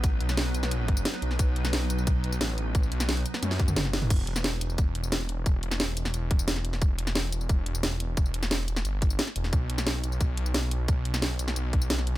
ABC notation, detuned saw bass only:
X:1
M:4/4
L:1/8
Q:1/4=177
K:Bphr
V:1 name="Detuned saw bass" clef=bass
A,,, B,,,4- B,,, z B,,, | B,,,3 B,,,3 A,,,2- | A,,, B,,,2 z F,,2 F,,,2 | E,,,3 E,,, E,,,2 E,,,2 |
E,,,3 E,,, E,,,2 E,,,2 | E,,,3 E,,, E,,,2 E,,,2 | E,,,3 E,,, G,,,2 z E,,, | B,,,3 B,,, B,,,2 B,,,2 |
B,,,3 B,,, B,,,2 B,,,2 |]